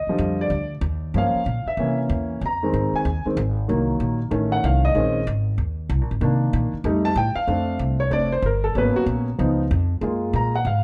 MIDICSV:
0, 0, Header, 1, 4, 480
1, 0, Start_track
1, 0, Tempo, 316623
1, 1749, Time_signature, 4, 2, 24, 8
1, 16429, End_track
2, 0, Start_track
2, 0, Title_t, "Grand piano"
2, 0, Program_c, 0, 0
2, 0, Note_on_c, 0, 75, 66
2, 139, Note_on_c, 0, 53, 55
2, 144, Note_on_c, 0, 55, 51
2, 161, Note_on_c, 0, 50, 55
2, 577, Note_off_c, 0, 75, 0
2, 624, Note_on_c, 0, 74, 78
2, 759, Note_off_c, 0, 53, 0
2, 762, Note_off_c, 0, 55, 0
2, 771, Note_off_c, 0, 50, 0
2, 1065, Note_off_c, 0, 74, 0
2, 1750, Note_on_c, 0, 53, 48
2, 1755, Note_on_c, 0, 58, 43
2, 1766, Note_on_c, 0, 61, 56
2, 1786, Note_on_c, 0, 77, 81
2, 2105, Note_off_c, 0, 53, 0
2, 2107, Note_off_c, 0, 58, 0
2, 2113, Note_off_c, 0, 61, 0
2, 2498, Note_off_c, 0, 77, 0
2, 2541, Note_on_c, 0, 76, 74
2, 2713, Note_on_c, 0, 52, 52
2, 2720, Note_on_c, 0, 58, 47
2, 2729, Note_on_c, 0, 61, 60
2, 2984, Note_off_c, 0, 76, 0
2, 3625, Note_off_c, 0, 52, 0
2, 3628, Note_off_c, 0, 58, 0
2, 3633, Note_off_c, 0, 61, 0
2, 3724, Note_on_c, 0, 82, 76
2, 3984, Note_on_c, 0, 51, 51
2, 3991, Note_on_c, 0, 56, 46
2, 4000, Note_on_c, 0, 60, 58
2, 4428, Note_off_c, 0, 82, 0
2, 4481, Note_on_c, 0, 80, 77
2, 4604, Note_off_c, 0, 51, 0
2, 4608, Note_off_c, 0, 56, 0
2, 4613, Note_off_c, 0, 60, 0
2, 4915, Note_off_c, 0, 80, 0
2, 4940, Note_on_c, 0, 56, 41
2, 4941, Note_on_c, 0, 51, 47
2, 4951, Note_on_c, 0, 60, 52
2, 5097, Note_off_c, 0, 56, 0
2, 5098, Note_off_c, 0, 51, 0
2, 5103, Note_off_c, 0, 60, 0
2, 5581, Note_on_c, 0, 51, 52
2, 5588, Note_on_c, 0, 54, 48
2, 5599, Note_on_c, 0, 58, 56
2, 6331, Note_off_c, 0, 51, 0
2, 6334, Note_off_c, 0, 54, 0
2, 6340, Note_off_c, 0, 58, 0
2, 6530, Note_on_c, 0, 51, 53
2, 6538, Note_on_c, 0, 57, 47
2, 6553, Note_on_c, 0, 61, 55
2, 6854, Note_on_c, 0, 78, 84
2, 7027, Note_off_c, 0, 78, 0
2, 7055, Note_on_c, 0, 77, 76
2, 7338, Note_off_c, 0, 77, 0
2, 7349, Note_on_c, 0, 75, 87
2, 7453, Note_off_c, 0, 51, 0
2, 7457, Note_off_c, 0, 57, 0
2, 7464, Note_off_c, 0, 61, 0
2, 7497, Note_on_c, 0, 51, 51
2, 7502, Note_on_c, 0, 56, 47
2, 7510, Note_on_c, 0, 60, 48
2, 7515, Note_on_c, 0, 61, 56
2, 7859, Note_off_c, 0, 51, 0
2, 7862, Note_off_c, 0, 56, 0
2, 7866, Note_off_c, 0, 60, 0
2, 7869, Note_off_c, 0, 61, 0
2, 7953, Note_off_c, 0, 75, 0
2, 9413, Note_on_c, 0, 51, 55
2, 9421, Note_on_c, 0, 58, 49
2, 9437, Note_on_c, 0, 62, 58
2, 10165, Note_off_c, 0, 51, 0
2, 10170, Note_off_c, 0, 58, 0
2, 10178, Note_off_c, 0, 62, 0
2, 10385, Note_on_c, 0, 55, 54
2, 10391, Note_on_c, 0, 57, 50
2, 10395, Note_on_c, 0, 63, 61
2, 10688, Note_on_c, 0, 81, 98
2, 10743, Note_off_c, 0, 55, 0
2, 10746, Note_off_c, 0, 57, 0
2, 10748, Note_off_c, 0, 63, 0
2, 10863, Note_off_c, 0, 81, 0
2, 10877, Note_on_c, 0, 79, 81
2, 11151, Note_on_c, 0, 77, 89
2, 11167, Note_off_c, 0, 79, 0
2, 11331, Note_on_c, 0, 57, 47
2, 11337, Note_on_c, 0, 60, 45
2, 11344, Note_on_c, 0, 62, 53
2, 11772, Note_off_c, 0, 77, 0
2, 12084, Note_off_c, 0, 57, 0
2, 12087, Note_off_c, 0, 60, 0
2, 12090, Note_off_c, 0, 62, 0
2, 12127, Note_on_c, 0, 73, 82
2, 12289, Note_on_c, 0, 57, 44
2, 12290, Note_on_c, 0, 60, 43
2, 12297, Note_on_c, 0, 62, 47
2, 12301, Note_off_c, 0, 73, 0
2, 12322, Note_on_c, 0, 74, 91
2, 12571, Note_off_c, 0, 57, 0
2, 12571, Note_off_c, 0, 60, 0
2, 12576, Note_off_c, 0, 62, 0
2, 12610, Note_off_c, 0, 74, 0
2, 12619, Note_on_c, 0, 72, 84
2, 12788, Note_off_c, 0, 72, 0
2, 12824, Note_on_c, 0, 70, 73
2, 13097, Note_on_c, 0, 69, 77
2, 13102, Note_off_c, 0, 70, 0
2, 13267, Note_off_c, 0, 69, 0
2, 13277, Note_on_c, 0, 54, 50
2, 13285, Note_on_c, 0, 58, 44
2, 13287, Note_on_c, 0, 59, 46
2, 13292, Note_on_c, 0, 61, 57
2, 13310, Note_on_c, 0, 71, 87
2, 13585, Note_off_c, 0, 71, 0
2, 13586, Note_on_c, 0, 66, 92
2, 13688, Note_off_c, 0, 66, 0
2, 14018, Note_off_c, 0, 54, 0
2, 14021, Note_off_c, 0, 58, 0
2, 14023, Note_off_c, 0, 59, 0
2, 14025, Note_off_c, 0, 61, 0
2, 14226, Note_on_c, 0, 53, 52
2, 14227, Note_on_c, 0, 59, 47
2, 14248, Note_on_c, 0, 63, 57
2, 14583, Note_off_c, 0, 53, 0
2, 14584, Note_off_c, 0, 59, 0
2, 14595, Note_off_c, 0, 63, 0
2, 15179, Note_on_c, 0, 56, 51
2, 15191, Note_on_c, 0, 58, 48
2, 15200, Note_on_c, 0, 65, 55
2, 15702, Note_on_c, 0, 82, 76
2, 15928, Note_off_c, 0, 56, 0
2, 15935, Note_off_c, 0, 58, 0
2, 15940, Note_off_c, 0, 65, 0
2, 15981, Note_off_c, 0, 82, 0
2, 16001, Note_on_c, 0, 78, 74
2, 16159, Note_off_c, 0, 78, 0
2, 16171, Note_on_c, 0, 77, 70
2, 16429, Note_off_c, 0, 77, 0
2, 16429, End_track
3, 0, Start_track
3, 0, Title_t, "Upright bass"
3, 0, Program_c, 1, 32
3, 279, Note_on_c, 1, 41, 92
3, 749, Note_off_c, 1, 41, 0
3, 758, Note_on_c, 1, 38, 87
3, 1223, Note_off_c, 1, 38, 0
3, 1232, Note_on_c, 1, 39, 101
3, 1716, Note_off_c, 1, 39, 0
3, 1729, Note_on_c, 1, 43, 87
3, 2021, Note_off_c, 1, 43, 0
3, 2213, Note_on_c, 1, 46, 88
3, 2502, Note_off_c, 1, 46, 0
3, 2686, Note_on_c, 1, 48, 82
3, 3164, Note_off_c, 1, 48, 0
3, 3175, Note_on_c, 1, 40, 93
3, 3648, Note_off_c, 1, 40, 0
3, 3659, Note_on_c, 1, 41, 83
3, 4131, Note_off_c, 1, 41, 0
3, 4147, Note_on_c, 1, 44, 86
3, 4431, Note_off_c, 1, 44, 0
3, 4624, Note_on_c, 1, 39, 88
3, 4910, Note_off_c, 1, 39, 0
3, 5105, Note_on_c, 1, 32, 102
3, 5574, Note_off_c, 1, 32, 0
3, 5596, Note_on_c, 1, 36, 82
3, 6054, Note_off_c, 1, 36, 0
3, 6063, Note_on_c, 1, 34, 91
3, 6528, Note_off_c, 1, 34, 0
3, 6537, Note_on_c, 1, 33, 91
3, 7010, Note_off_c, 1, 33, 0
3, 7031, Note_on_c, 1, 36, 99
3, 7491, Note_off_c, 1, 36, 0
3, 7500, Note_on_c, 1, 34, 81
3, 7972, Note_off_c, 1, 34, 0
3, 7987, Note_on_c, 1, 32, 99
3, 8447, Note_off_c, 1, 32, 0
3, 8456, Note_on_c, 1, 39, 87
3, 8929, Note_off_c, 1, 39, 0
3, 8936, Note_on_c, 1, 36, 100
3, 9111, Note_off_c, 1, 36, 0
3, 9111, Note_on_c, 1, 34, 60
3, 9253, Note_off_c, 1, 34, 0
3, 9262, Note_on_c, 1, 32, 76
3, 9406, Note_off_c, 1, 32, 0
3, 9415, Note_on_c, 1, 48, 91
3, 9888, Note_off_c, 1, 48, 0
3, 9902, Note_on_c, 1, 46, 97
3, 10188, Note_off_c, 1, 46, 0
3, 10371, Note_on_c, 1, 41, 94
3, 10839, Note_off_c, 1, 41, 0
3, 10848, Note_on_c, 1, 45, 104
3, 11140, Note_off_c, 1, 45, 0
3, 11331, Note_on_c, 1, 41, 78
3, 11806, Note_off_c, 1, 41, 0
3, 11814, Note_on_c, 1, 36, 89
3, 12287, Note_off_c, 1, 36, 0
3, 12296, Note_on_c, 1, 29, 83
3, 12762, Note_off_c, 1, 29, 0
3, 12771, Note_on_c, 1, 31, 94
3, 13246, Note_off_c, 1, 31, 0
3, 13266, Note_on_c, 1, 32, 81
3, 13550, Note_off_c, 1, 32, 0
3, 13740, Note_on_c, 1, 34, 88
3, 14211, Note_off_c, 1, 34, 0
3, 14236, Note_on_c, 1, 37, 88
3, 14699, Note_off_c, 1, 37, 0
3, 14718, Note_on_c, 1, 41, 99
3, 15170, Note_off_c, 1, 41, 0
3, 15179, Note_on_c, 1, 42, 81
3, 15650, Note_off_c, 1, 42, 0
3, 15666, Note_on_c, 1, 46, 92
3, 16133, Note_off_c, 1, 46, 0
3, 16141, Note_on_c, 1, 44, 89
3, 16429, Note_off_c, 1, 44, 0
3, 16429, End_track
4, 0, Start_track
4, 0, Title_t, "Muted upright bass strokes"
4, 105, Note_on_c, 9, 29, 40
4, 257, Note_off_c, 9, 29, 0
4, 2039, Note_on_c, 9, 29, 43
4, 2190, Note_off_c, 9, 29, 0
4, 2519, Note_on_c, 9, 29, 40
4, 2670, Note_off_c, 9, 29, 0
4, 4445, Note_on_c, 9, 29, 44
4, 4597, Note_off_c, 9, 29, 0
4, 4931, Note_on_c, 9, 29, 42
4, 5083, Note_off_c, 9, 29, 0
4, 10210, Note_on_c, 9, 29, 45
4, 10362, Note_off_c, 9, 29, 0
4, 11151, Note_on_c, 9, 29, 43
4, 11302, Note_off_c, 9, 29, 0
4, 13575, Note_on_c, 9, 29, 42
4, 13727, Note_off_c, 9, 29, 0
4, 16429, End_track
0, 0, End_of_file